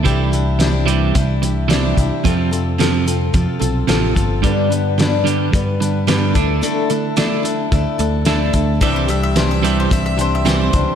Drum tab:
HH |xxxxxxxx|xxxxxxxx|xxxxxxxx|xxxxxxxx|
SD |--o---o-|--o---o-|--o---o-|--o---o-|
BD |o---o--o|o---o--o|o---o--o|----o--o|

HH |xxxxxxxx|
SD |--o---o-|
BD |o---o--o|